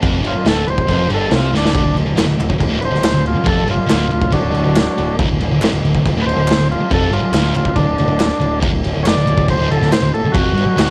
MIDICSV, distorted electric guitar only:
0, 0, Header, 1, 3, 480
1, 0, Start_track
1, 0, Tempo, 430108
1, 25, Time_signature, 4, 2, 24, 8
1, 12166, End_track
2, 0, Start_track
2, 0, Title_t, "Distorted electric guitar"
2, 0, Program_c, 0, 30
2, 17, Note_on_c, 0, 41, 110
2, 239, Note_off_c, 0, 41, 0
2, 243, Note_on_c, 0, 43, 101
2, 367, Note_off_c, 0, 43, 0
2, 501, Note_on_c, 0, 38, 110
2, 728, Note_off_c, 0, 38, 0
2, 741, Note_on_c, 0, 38, 73
2, 935, Note_off_c, 0, 38, 0
2, 975, Note_on_c, 0, 41, 100
2, 1210, Note_off_c, 0, 41, 0
2, 1214, Note_on_c, 0, 43, 93
2, 1447, Note_off_c, 0, 43, 0
2, 1451, Note_on_c, 0, 48, 106
2, 1692, Note_off_c, 0, 48, 0
2, 1703, Note_on_c, 0, 38, 104
2, 1927, Note_off_c, 0, 38, 0
2, 1940, Note_on_c, 0, 38, 106
2, 2044, Note_off_c, 0, 38, 0
2, 2058, Note_on_c, 0, 38, 70
2, 2154, Note_off_c, 0, 38, 0
2, 2167, Note_on_c, 0, 38, 75
2, 2289, Note_off_c, 0, 38, 0
2, 2302, Note_on_c, 0, 38, 74
2, 2408, Note_off_c, 0, 38, 0
2, 2412, Note_on_c, 0, 41, 113
2, 2532, Note_off_c, 0, 41, 0
2, 2537, Note_on_c, 0, 38, 74
2, 2643, Note_off_c, 0, 38, 0
2, 2656, Note_on_c, 0, 38, 70
2, 2767, Note_off_c, 0, 38, 0
2, 2781, Note_on_c, 0, 38, 76
2, 2873, Note_off_c, 0, 38, 0
2, 2886, Note_on_c, 0, 38, 74
2, 2990, Note_off_c, 0, 38, 0
2, 3003, Note_on_c, 0, 38, 99
2, 3110, Note_off_c, 0, 38, 0
2, 3123, Note_on_c, 0, 38, 67
2, 3233, Note_off_c, 0, 38, 0
2, 3247, Note_on_c, 0, 38, 75
2, 3448, Note_off_c, 0, 38, 0
2, 3491, Note_on_c, 0, 38, 75
2, 3690, Note_off_c, 0, 38, 0
2, 3837, Note_on_c, 0, 41, 106
2, 4075, Note_off_c, 0, 41, 0
2, 4080, Note_on_c, 0, 43, 107
2, 4190, Note_off_c, 0, 43, 0
2, 4313, Note_on_c, 0, 38, 116
2, 4553, Note_off_c, 0, 38, 0
2, 4566, Note_on_c, 0, 38, 71
2, 4768, Note_off_c, 0, 38, 0
2, 4807, Note_on_c, 0, 38, 72
2, 5008, Note_off_c, 0, 38, 0
2, 5043, Note_on_c, 0, 38, 75
2, 5174, Note_off_c, 0, 38, 0
2, 5187, Note_on_c, 0, 38, 79
2, 5378, Note_off_c, 0, 38, 0
2, 5557, Note_on_c, 0, 38, 75
2, 5743, Note_off_c, 0, 38, 0
2, 5798, Note_on_c, 0, 38, 114
2, 5900, Note_off_c, 0, 38, 0
2, 5913, Note_on_c, 0, 38, 71
2, 6015, Note_off_c, 0, 38, 0
2, 6028, Note_on_c, 0, 38, 76
2, 6140, Note_off_c, 0, 38, 0
2, 6153, Note_on_c, 0, 38, 66
2, 6259, Note_off_c, 0, 38, 0
2, 6263, Note_on_c, 0, 41, 110
2, 6377, Note_off_c, 0, 41, 0
2, 6383, Note_on_c, 0, 38, 77
2, 6496, Note_off_c, 0, 38, 0
2, 6510, Note_on_c, 0, 38, 76
2, 6622, Note_off_c, 0, 38, 0
2, 6635, Note_on_c, 0, 38, 78
2, 6747, Note_off_c, 0, 38, 0
2, 6760, Note_on_c, 0, 38, 73
2, 6868, Note_off_c, 0, 38, 0
2, 6882, Note_on_c, 0, 38, 111
2, 6978, Note_off_c, 0, 38, 0
2, 6992, Note_on_c, 0, 38, 75
2, 7091, Note_off_c, 0, 38, 0
2, 7104, Note_on_c, 0, 38, 77
2, 7296, Note_off_c, 0, 38, 0
2, 7339, Note_on_c, 0, 38, 74
2, 7534, Note_off_c, 0, 38, 0
2, 7698, Note_on_c, 0, 41, 112
2, 7934, Note_off_c, 0, 41, 0
2, 7945, Note_on_c, 0, 43, 108
2, 8057, Note_off_c, 0, 43, 0
2, 8196, Note_on_c, 0, 38, 107
2, 8423, Note_off_c, 0, 38, 0
2, 8447, Note_on_c, 0, 38, 71
2, 8628, Note_off_c, 0, 38, 0
2, 8666, Note_on_c, 0, 38, 72
2, 8857, Note_off_c, 0, 38, 0
2, 8923, Note_on_c, 0, 38, 74
2, 8998, Note_off_c, 0, 38, 0
2, 9011, Note_on_c, 0, 38, 76
2, 9210, Note_off_c, 0, 38, 0
2, 9370, Note_on_c, 0, 38, 69
2, 9570, Note_off_c, 0, 38, 0
2, 9598, Note_on_c, 0, 38, 117
2, 9718, Note_off_c, 0, 38, 0
2, 9731, Note_on_c, 0, 38, 73
2, 9851, Note_off_c, 0, 38, 0
2, 9864, Note_on_c, 0, 38, 73
2, 9967, Note_off_c, 0, 38, 0
2, 9980, Note_on_c, 0, 38, 70
2, 10094, Note_off_c, 0, 38, 0
2, 10099, Note_on_c, 0, 41, 111
2, 10214, Note_off_c, 0, 41, 0
2, 10221, Note_on_c, 0, 38, 76
2, 10317, Note_off_c, 0, 38, 0
2, 10331, Note_on_c, 0, 38, 70
2, 10445, Note_off_c, 0, 38, 0
2, 10459, Note_on_c, 0, 38, 78
2, 10563, Note_off_c, 0, 38, 0
2, 10577, Note_on_c, 0, 38, 71
2, 10689, Note_off_c, 0, 38, 0
2, 10703, Note_on_c, 0, 38, 100
2, 10800, Note_off_c, 0, 38, 0
2, 10814, Note_on_c, 0, 38, 71
2, 10937, Note_off_c, 0, 38, 0
2, 10950, Note_on_c, 0, 38, 78
2, 11139, Note_off_c, 0, 38, 0
2, 11178, Note_on_c, 0, 38, 72
2, 11373, Note_off_c, 0, 38, 0
2, 11537, Note_on_c, 0, 41, 110
2, 11753, Note_off_c, 0, 41, 0
2, 11758, Note_on_c, 0, 43, 103
2, 11884, Note_off_c, 0, 43, 0
2, 12009, Note_on_c, 0, 38, 117
2, 12166, Note_off_c, 0, 38, 0
2, 12166, End_track
3, 0, Start_track
3, 0, Title_t, "Muted distorted electric guitar strokes"
3, 387, Note_on_c, 9, 29, 53
3, 499, Note_off_c, 9, 29, 0
3, 3733, Note_on_c, 9, 29, 58
3, 3844, Note_off_c, 9, 29, 0
3, 4194, Note_on_c, 9, 29, 53
3, 4306, Note_off_c, 9, 29, 0
3, 7580, Note_on_c, 9, 29, 57
3, 7692, Note_off_c, 9, 29, 0
3, 8062, Note_on_c, 9, 29, 57
3, 8173, Note_off_c, 9, 29, 0
3, 11443, Note_on_c, 9, 29, 64
3, 11555, Note_off_c, 9, 29, 0
3, 11896, Note_on_c, 9, 29, 54
3, 12007, Note_off_c, 9, 29, 0
3, 12166, End_track
0, 0, End_of_file